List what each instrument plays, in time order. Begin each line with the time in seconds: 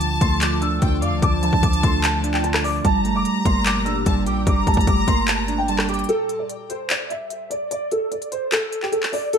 Already playing: 808-style bass D2, clean electric guitar D3 F3, analog synth pad F3 D4 F4, violin section A5
0.01 closed hi-hat
0.21 808-style bass D2, clean electric guitar A3, grand piano C6, kick, closed hi-hat
0.41 grand piano D6, clap, closed hi-hat
0.61 clean electric guitar D4, grand piano E6, closed hi-hat
0.82 808-style bass D2, clean electric guitar D3, violin section G5, kick, closed hi-hat
1.02 808-style bass F2, clean electric guitar D5, violin section F5, grand piano D6, closed hi-hat
1.12 808-style bass D2
1.22 808-style bass D2, clean electric guitar D3, violin section A5, grand piano D6, kick, closed hi-hat
1.43 clean electric guitar F3, grand piano A5, closed hi-hat
1.53 808-style bass D2, kick
1.63 808-style bass D2, grand piano D6, kick, closed hi-hat
1.73 closed hi-hat
1.83 808-style bass D2, clean electric guitar A3, grand piano C6, kick, closed hi-hat
2.03 grand piano A5, clap, closed hi-hat
2.24 clean electric guitar D4, closed hi-hat
2.34 grand piano G5, clap
2.43 clean electric guitar D3, grand piano A5, closed hi-hat
2.54 cross-stick, clap
2.64 clean electric guitar D5, grand piano D6, open hi-hat
2.85 808-style bass G1, analog synth pad A#2 G3 G4, clean electric guitar G3, grand piano A5, violin section A#5, kick, closed hi-hat
3.05 clean electric guitar A3, closed hi-hat
3.15 808-style bass F1, grand piano D6
3.25 closed hi-hat
3.45 808-style bass G1, clean electric guitar A#3, grand piano C6, kick, closed hi-hat
3.66 grand piano D6, clap, closed hi-hat
3.85 clean electric guitar D4, grand piano E6, closed hi-hat
4.06 808-style bass G1, clean electric guitar G3, violin section A5, kick, closed hi-hat
4.26 808-style bass A#1, clean electric guitar G4, violin section G5, grand piano D6, closed hi-hat
4.47 808-style bass G1, clean electric guitar G3, violin section A#5, grand piano D6, kick, closed hi-hat
4.67 808-style bass G1, clean electric guitar A3, grand piano A5, kick, closed hi-hat
4.74 808-style bass G1, kick, closed hi-hat
4.81 closed hi-hat
4.87 808-style bass G1, grand piano D6, kick, closed hi-hat
5.08 808-style bass G1, clean electric guitar A#3, grand piano C6, kick, closed hi-hat
5.28 grand piano A5, clap, closed hi-hat
5.48 clean electric guitar D4, closed hi-hat
5.58 grand piano G5
5.68 clean electric guitar G3, grand piano A5, violin section A5, closed hi-hat
5.79 cross-stick, clap
5.89 clean electric guitar G4, violin section G5, grand piano D6, closed hi-hat, open hi-hat
5.94 closed hi-hat
5.99 closed hi-hat
6.04 closed hi-hat
6.09 grand piano A4, closed hi-hat
6.29 closed hi-hat
6.39 grand piano D5
6.49 closed hi-hat
6.70 grand piano C5, closed hi-hat
6.90 grand piano D5, clap, closed hi-hat
7.10 grand piano E5, closed hi-hat
7.30 closed hi-hat
7.50 grand piano D5, closed hi-hat
7.71 grand piano D5, closed hi-hat
7.91 grand piano A4, closed hi-hat
8.12 grand piano D5, closed hi-hat
8.22 closed hi-hat
8.32 grand piano C5, closed hi-hat
8.52 grand piano A4, clap, closed hi-hat
8.72 closed hi-hat
8.82 grand piano G4, clap
8.92 grand piano A4, closed hi-hat
9.03 clap
9.13 grand piano D5, open hi-hat
9.33 grand piano A4, closed hi-hat